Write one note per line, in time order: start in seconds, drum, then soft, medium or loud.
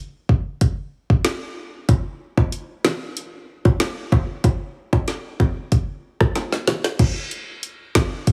0.29 kick medium
0.61 kick loud
0.61 closed hi-hat medium
1.10 kick medium
1.25 snare loud
1.25 closed hi-hat medium
1.89 kick loud
1.89 closed hi-hat medium
1.89 high bongo medium
2.37 kick loud
2.37 high bongo medium
2.52 closed hi-hat medium
2.85 snare loud
2.85 low bongo medium
3.17 closed hi-hat medium
3.65 kick medium
3.65 high bongo medium
3.80 snare loud
3.80 closed hi-hat medium
3.80 high bongo medium
4.12 kick loud
4.12 high bongo medium
4.12 low bongo medium
4.44 kick loud
4.44 closed hi-hat medium
4.44 high bongo medium
4.93 kick medium
4.93 high bongo medium
5.08 snare medium
5.08 closed hi-hat medium
5.40 kick medium
5.40 high bongo medium
5.40 low bongo medium
5.72 kick loud
5.72 closed hi-hat medium
6.21 kick medium
6.21 cross-stick loud
6.21 high bongo medium
6.35 snare medium
6.35 closed hi-hat medium
6.35 high bongo medium
6.52 snare medium
6.52 high bongo soft
6.67 snare loud
6.67 high bongo medium
6.67 low bongo medium
6.84 snare medium
6.99 kick loud
6.99 closed hi-hat medium
6.99 crash loud
6.99 high bongo medium
7.31 closed hi-hat medium
7.63 closed hi-hat medium
7.95 kick medium
7.95 snare loud
7.95 closed hi-hat medium
7.95 low bongo medium
8.27 kick loud
8.27 closed hi-hat medium